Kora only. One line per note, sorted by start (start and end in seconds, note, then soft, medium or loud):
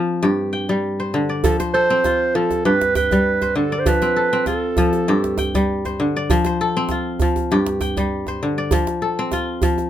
0.00 0.27 F3 medium
0.00 1.29 C4 medium
0.00 1.13 F4 medium
0.00 0.64 A4 medium
0.23 1.48 G2 medium
0.23 1.64 G4 medium
0.53 1.46 G5 medium
0.69 1.18 G3 medium
1.00 1.59 C5 medium
1.14 1.48 D3 medium
1.29 2.40 D5 medium
1.44 2.34 F3 medium
1.60 2.79 C5 medium
1.74 3.06 A4 medium
1.90 3.70 C4 medium
2.05 3.57 F4 medium
2.35 2.69 F3 medium
2.65 3.91 G2 medium
2.65 4.07 G4 medium
2.96 3.89 G5 medium
3.12 3.60 G3 medium
3.42 4.61 C5 medium
3.55 3.91 D3 medium
3.72 4.83 D5 medium
3.86 4.76 F3 medium
4.02 4.32 C4 medium
4.16 5.48 A4 medium
4.33 6.13 C4 medium
4.47 5.98 F4 medium
4.78 5.12 F3 medium
5.08 6.34 G2 medium
5.08 6.50 G4 medium
5.38 6.32 G5 medium
5.55 6.03 G3 medium
5.85 6.46 C5 medium
6.00 6.33 D3 medium
6.16 7.27 D5 medium
6.30 7.21 F3 medium
6.46 7.65 C5 medium
6.61 7.93 A4 medium
6.77 8.57 C4 medium
6.91 8.43 F4 medium
7.22 7.55 F3 medium
7.52 8.76 G2 medium
7.52 8.93 G4 medium
7.81 8.74 G5 medium
7.97 8.46 G3 medium
8.28 9.47 C5 medium
8.43 8.76 D3 medium
8.58 9.69 D5 medium
8.72 9.61 F3 medium
9.02 9.90 A4 medium
9.19 9.90 C4 medium
9.33 9.90 F4 medium
9.63 9.90 F3 medium